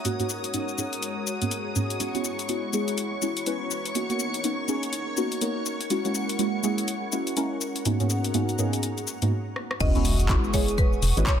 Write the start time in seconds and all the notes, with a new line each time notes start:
Already playing: F#4 C#5 F#5 A#5 D#6
0.04 G#2 G#3 A#3 B3 C#4 D#4 F#4 G#4 A#4 C#5, closed hi-hat, shaker
0.19 G#2 A#3 B3 C#4 D#4 F#4, closed hi-hat, shaker
0.29 shaker
0.44 closed hi-hat, shaker
0.53 G#2 A#3 B3 C#4 D#4 F#4, closed hi-hat, shaker
0.68 shaker
0.78 G#2 A#3 B3 C#4 D#4 G#4, shaker
0.93 closed hi-hat, shaker
1.02 closed hi-hat, shaker
1.27 shaker
1.41 G#2 A#3 B3 C#4 D#4 F#4, closed hi-hat, shaker
1.51 closed hi-hat, shaker
1.75 G#2 A#3 B3 C#4 D#4 G#4, shaker
1.90 closed hi-hat, shaker
2.00 G#3 B3 C#4 E4 F#4 C#6, closed hi-hat, shaker
2.14 G#3 B3 C#4 E4 F#4, closed hi-hat, shaker
2.24 shaker
2.30 C#5
2.39 closed hi-hat, shaker
2.48 G#3 B3 C#4 E4 F#4, closed hi-hat, shaker
2.73 G#3 B3 C#4 E4 G#4, shaker
2.88 closed hi-hat, shaker
2.98 closed hi-hat, shaker
3.22 G#3 B3 C#4 E4 F#4, shaker
3.37 closed hi-hat, shaker
3.46 G#3 B3 C#4 E4 B4, closed hi-hat, shaker
3.71 shaker
3.85 closed hi-hat, shaker
3.95 A#3 B3 C#4 D#4 F#4 A#4, closed hi-hat, shaker
4.09 A#3 B3 C#4 D#4 F#4, closed hi-hat, shaker
4.20 shaker
4.34 closed hi-hat, shaker
4.43 A#3 B3 C#4 D#4 F#4, closed hi-hat, shaker
4.68 A#3 B3 C#4 D#4 G#4, shaker
4.83 closed hi-hat, shaker
4.93 closed hi-hat, shaker
5.17 A#3 B3 C#4 D#4 F#4, shaker
5.32 closed hi-hat, shaker
5.41 A#3 B3 C#4 D#4 A#4, closed hi-hat, shaker
5.66 shaker
5.81 closed hi-hat, shaker
5.90 G#3 A#3 C#4 E4 F#4 F#5, closed hi-hat, shaker
6.05 G#3 A#3 C#4 E4 F#4, closed hi-hat, shaker
6.15 shaker
6.25 F#5
6.29 closed hi-hat, shaker
6.39 G#3 A#3 C#4 E4 F#4, closed hi-hat, shaker
6.63 G#3 A#3 C#4 E4 G#4, shaker
6.78 A#5, closed hi-hat, shaker
6.88 closed hi-hat, shaker
7.12 G#3 A#3 C#4 E4 F#4, shaker
7.27 closed hi-hat, shaker
7.36 G#3 A#3 C#4 E4 A#4, closed hi-hat, shaker
7.61 shaker
7.76 closed hi-hat, shaker
7.85 G#2 A#3 B3 C#4 D#4 F#4 G#4 A#4 F#5, closed hi-hat, shaker
8.00 G#2 A#3 B3 C#4 D#4 F#4, closed hi-hat, shaker
8.10 shaker
8.24 closed hi-hat, shaker
8.34 G#2 A#3 B3 C#4 D#4 F#4, closed hi-hat, shaker
8.49 closed hi-hat, shaker
8.58 G#2 A#3 B3 C#4 D#4 G#4, shaker
8.73 closed hi-hat, shaker
8.83 closed hi-hat, shaker
8.98 closed hi-hat, shaker
9.07 shaker
9.22 G#2 A#3 B3 C#4 D#4 F#4, closed hi-hat, shaker
9.56 cross-stick
9.71 cross-stick
9.80 E1 G#3 B3 C#4 E4 F#4 G#4 D#5 F#5 C#6 D#6, kick, closed hi-hat, crash, sub drop, shaker
9.95 G#3 B3 C#4 E4 F#4, closed hi-hat, shaker
10.05 open hi-hat, shaker
10.20 closed hi-hat, shaker
10.29 G#3 B3 C#4 E4 F#4, kick, clap, closed hi-hat, shaker
10.44 shaker
10.53 G#3 B3 C#4 E4 G#4 C#5, kick, open hi-hat, shaker
10.68 closed hi-hat, shaker
10.78 B4, kick, closed hi-hat, shaker
10.93 shaker
11.02 E1, open hi-hat, shaker
11.17 G#1 G#3 B3 C#4 E4 F#4, closed hi-hat, shaker
11.27 C#5, kick, clap, closed hi-hat, shaker